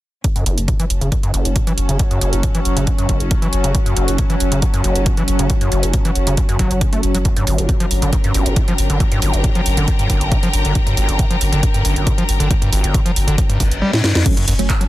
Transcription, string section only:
0.24 7.25 C#4 loud
0.42 7.25 A4 medium
0.60 7.25 A5 medium
0.96 7.25 F#5 medium
7.25 13.82 D3 medium
7.58 13.82 A#4 medium
7.86 13.82 A#5 medium
8.03 13.82 G5 medium
14.26 14.88 C#4 medium
14.64 14.88 A4 medium

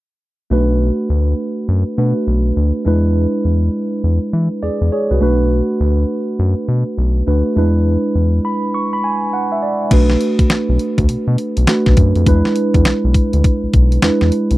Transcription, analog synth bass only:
0.51 0.91 B1 medium
1.10 1.34 D2 medium
1.68 1.84 F#2 loud
1.98 2.13 B2 medium
2.27 2.52 B1 medium
2.57 2.72 D2 medium
2.86 3.27 E2 loud
3.45 3.70 E2 medium
4.04 4.19 E2 medium
4.33 4.49 E3 medium
4.63 4.70 E2 soft
4.81 4.90 E2 medium
5.11 5.20 C2 medium
5.21 5.62 B1 medium
5.80 6.05 D2 medium
6.39 6.55 F#2 loud
6.68 6.84 B2 medium
6.98 7.23 B1 medium
7.27 7.43 D2 medium
7.56 7.97 E2 loud
8.15 8.40 E2 medium
9.91 10.16 B1 loud
10.39 10.44 B1 soft
10.69 10.78 B1 medium
10.98 11.07 D2 medium
11.09 11.17 B2 soft
11.27 11.37 B2 medium
11.57 11.66 B1 medium
11.87 11.96 B1 medium
11.97 12.13 F#2 medium
12.16 12.25 F2 medium
12.27 12.43 E2 loud
12.75 12.84 E2 medium
12.86 12.93 B1 soft
13.04 13.13 B1 loud
13.33 13.43 D2 medium
13.63 13.67 B1 soft
13.74 13.99 B1 medium
14.03 14.11 E2 soft
14.22 14.31 E2 medium
14.51 14.58 C2 medium

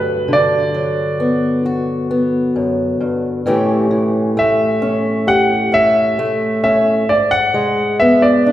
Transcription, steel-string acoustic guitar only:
0.00 2.55 G2 medium
0.00 0.27 D3 medium
0.00 0.73 F#3 soft
0.28 3.45 D3 medium
0.74 3.45 F#3 soft
1.20 2.09 B3 soft
1.66 3.41 F#4 soft
2.11 3.40 B3 soft
2.56 3.00 F#2 medium
3.01 3.46 G2 soft
3.46 7.08 A2 medium
3.46 3.90 E3 soft
3.46 4.36 A3 soft
3.46 4.81 C#4 soft
3.46 5.26 G4 medium
3.91 7.03 E3 medium
4.37 6.18 A3 soft
4.82 5.71 C#4 medium
5.27 7.03 G4 medium
5.72 6.62 C#4 soft
6.19 7.04 A3 medium
6.64 7.03 C#4 soft
7.09 8.52 G#2 medium
7.54 8.52 G#3 medium
8.01 8.52 B3 soft
8.46 8.52 D4 soft

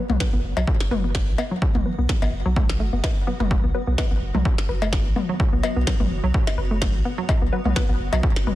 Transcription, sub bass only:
0.10 0.18 B1 medium
0.33 0.42 A1 loud
0.44 0.54 F#1 loud
0.57 0.65 B1 medium
0.91 1.29 F#1 medium
1.28 1.36 B1 medium
1.75 1.83 B1 medium
1.98 2.07 B1 medium
2.22 2.31 A1 loud
2.33 2.43 F#1 loud
2.46 2.82 B1 medium
2.80 2.90 F#1 medium
2.93 3.02 F#1 medium
3.40 3.58 F#1 loud
3.64 3.72 B1 medium
3.87 3.96 B1 medium
4.11 4.20 A1 loud
4.22 4.32 F#1 loud
4.35 4.43 B1 medium
4.69 5.07 F#1 medium
5.05 5.14 B1 loud
5.53 5.61 B1 medium
5.76 5.85 B1 medium
6.00 6.09 A1 loud
6.11 6.21 F#1 loud
6.24 6.32 B1 medium
6.58 6.96 F#1 medium
6.94 7.03 B1 loud
7.42 7.50 B1 medium
7.65 7.74 B1 medium
7.89 7.98 A1 loud
8.00 8.10 F#1 loud
8.13 8.21 B1 medium
8.47 8.55 F#1 medium

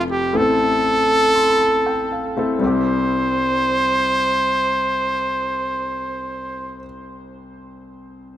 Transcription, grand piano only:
0.00 0.30 F1 medium
0.00 0.30 F2 medium
0.00 0.33 A3 medium
0.00 0.35 C4 medium
0.00 0.35 F4 medium
0.00 0.35 A4 medium
0.33 2.33 A1 soft
0.33 2.33 A2 soft
0.33 1.23 A3 medium
0.33 0.40 B3 soft
0.33 1.23 E4 medium
0.33 1.24 A4 medium
0.40 1.26 C4 medium
1.35 1.49 C6 medium
1.50 1.60 B5 soft
1.60 1.84 A5 medium
1.86 2.10 G5 soft
2.12 2.36 F5 medium
2.36 2.59 A3 medium
2.36 2.59 C4 medium
2.36 2.60 E4 medium
2.36 2.60 A4 medium
2.36 2.61 E5 soft
2.59 6.79 C2 medium
2.59 6.76 G3 medium
2.59 6.78 C4 medium
2.64 6.81 E4 medium
2.64 6.83 G4 medium

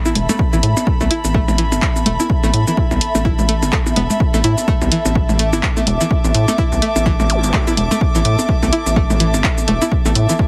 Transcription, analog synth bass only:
0.15 0.27 E1 loud
0.53 0.61 A1 loud
0.63 0.74 A2 loud
1.01 1.09 C2 medium
1.25 1.43 A1 medium
1.48 1.74 A1 medium
1.72 1.80 G1 loud
2.06 2.17 E1 medium
2.44 2.52 A1 loud
2.54 2.65 A2 loud
2.91 2.99 C2 loud
3.15 3.34 A1 medium
3.39 3.64 A1 medium
3.63 3.71 G1 loud
3.96 4.08 E1 loud
4.34 4.42 A1 loud
4.44 4.55 A2 loud
4.82 4.90 C2 loud
5.05 5.24 A1 medium
5.29 5.55 A1 loud
5.53 5.61 G1 loud
5.87 5.98 E1 loud
6.25 6.33 A1 loud
6.34 6.46 A2 loud
6.72 6.80 C2 medium
6.96 7.15 A1 medium
7.20 7.45 A1 loud
7.44 7.52 G1 loud
7.77 7.89 E1 loud
8.15 8.23 A1 loud
8.25 8.36 A2 loud
8.63 8.71 C2 loud
8.86 9.05 A1 medium
9.10 9.36 A1 loud
9.34 9.42 G1 loud
9.68 9.79 E1 medium
10.05 10.14 A1 loud
10.15 10.27 A2 loud

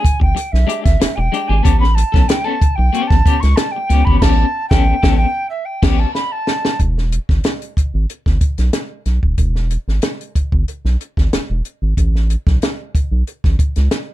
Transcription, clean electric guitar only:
0.03 muted clean electric guitar stroke soft
0.20 muted clean electric guitar stroke soft
0.35 muted clean electric guitar stroke soft
0.67 0.82 G#3 medium
0.67 0.83 D4 medium
0.67 0.83 G4 medium
0.84 muted clean electric guitar stroke medium
1.00 muted clean electric guitar stroke soft
1.18 muted clean electric guitar stroke soft
1.32 1.47 G#3 medium
1.32 1.48 D4 medium
1.32 1.48 G4 medium
1.49 1.62 G#3 medium
1.49 1.63 D4 medium
1.49 1.63 G4 medium
1.63 1.83 B3 medium
1.63 1.83 C#4 medium
1.63 1.84 G4 loud
1.96 muted clean electric guitar stroke soft
2.12 2.28 B3 medium
2.12 2.27 C#4 medium
2.12 2.26 A4 medium
2.29 muted clean electric guitar stroke soft
2.44 2.59 B3 medium
2.44 2.60 C#4 medium
2.44 2.62 A4 medium
2.78 muted clean electric guitar stroke soft
2.93 3.14 B3 medium
2.93 3.10 C#4 loud
2.93 3.09 G4 loud
3.11 muted clean electric guitar stroke soft
3.26 3.41 B3 medium
3.26 3.41 C#4 medium
3.26 3.41 G4 medium
3.58 muted clean electric guitar stroke soft
3.76 muted clean electric guitar stroke soft
3.89 4.05 B3 medium
3.89 4.05 C#4 medium
3.89 4.05 G4 medium
4.06 4.21 B3 medium
4.06 4.21 C#4 medium
4.06 4.20 G4 medium
4.22 4.44 B3 loud
4.22 4.45 C#4 loud
4.22 4.45 G4 loud
4.72 4.95 B3 medium
4.72 4.94 C#4 loud
4.72 4.93 A4 loud
5.03 5.26 B3 loud
5.03 5.25 C#4 loud
5.03 5.25 A4 loud
5.83 6.05 B3 loud
5.83 6.06 C#4 medium
5.83 6.06 G4 loud

